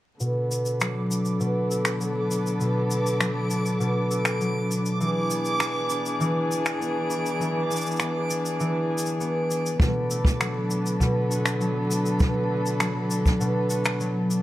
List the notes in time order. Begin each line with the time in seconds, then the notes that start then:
0.20 B2 D3 B3 A4 D6, cabasa
0.50 B3, cabasa
0.65 cabasa
0.80 F#3, finger snap, cabasa
1.10 D4, cabasa
1.25 cabasa
1.40 B2, cabasa
1.70 A4, cabasa
1.85 finger snap, cabasa
2.00 F#3, cabasa
2.31 D4, cabasa
2.46 cabasa
2.60 B2, cabasa
2.90 B3, cabasa
3.06 cabasa
3.20 F#3, finger snap, cabasa
3.50 D4, cabasa
3.66 cabasa
3.80 B2, cabasa
4.10 A4, cabasa
4.25 finger snap, cabasa
4.40 F#3, cabasa
4.71 D4, cabasa
4.86 cabasa
5.00 E3 D4 G#4, cabasa
5.30 B3, cabasa
5.45 cabasa
5.60 B3, finger snap, cabasa
5.90 D4, cabasa
6.06 cabasa
6.20 E3, cabasa
6.50 G#4, cabasa
6.66 finger snap, cabasa
6.80 B3, cabasa
7.10 D4, cabasa
7.26 cabasa
7.40 E3, cabasa
7.70 B3, cabasa
7.76 cabasa
7.81 cabasa
7.86 cabasa
7.91 cabasa
7.96 finger snap, cabasa
8.00 B3, cabasa
8.30 D4, cabasa
8.46 cabasa
8.60 E3, cabasa
8.90 G#4
8.98 cabasa
9.06 cabasa
9.20 B3, cabasa
9.50 D4, cabasa
9.66 cabasa
9.80 B2 D3 B3 A4, kick, cabasa
10.11 A3, cabasa
10.25 kick, cabasa
10.40 F#3, finger snap, cabasa
10.70 D4, cabasa
10.86 cabasa
11.00 B2, kick, cabasa
11.30 F#4, cabasa
11.45 finger snap, cabasa
11.60 F#3, cabasa
11.90 D4, cabasa
12.06 cabasa
12.20 B2, kick, cabasa
12.50 A3
12.66 cabasa
12.80 F#3, finger snap, cabasa
13.10 D4, cabasa
13.26 kick, cabasa
13.40 B2, cabasa
13.70 F#4, cabasa
13.85 finger snap, cabasa
14.00 F#3, cabasa
14.30 D4, cabasa